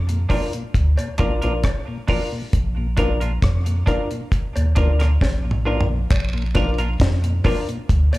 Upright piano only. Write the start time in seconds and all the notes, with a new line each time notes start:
0.30 D4 F4 A#4 D5
1.19 D4 F4 A#4 D5
1.43 D4 F4 A#4 D5
2.09 D4 F4 A#4 D5
2.98 D4 F4 A#4 D5
3.87 D4 F4 A#4 D5
4.76 D4 F4 A#4 D5
5.66 D4 F4 A#4 D5
6.56 D4 F4 A#4 D5
7.45 D4 F4 A#4 D5